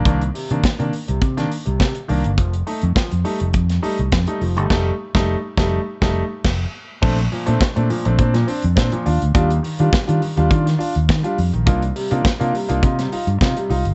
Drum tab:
CC |----------------|----------------|x-----------x---|x---------------|
HH |xxoxxxoxxxoxxxox|xxoxxxoxxxoxxxox|----------------|-xoxxxoxxxoxxxox|
SD |----o----o--o---|----o----o--o---|o--o--o--o--o---|----o----o--o---|
BD |o---o---o---o---|o---o---o---o---|o--o--o--o--o---|o---o---o---o---|

CC |----------------|----------------|
HH |xxoxxxoxxxoxxxox|xxoxxxoxxxoxxxox|
SD |----o----o--o---|----o----o--o---|
BD |o---o---o---o---|o---o---o---o---|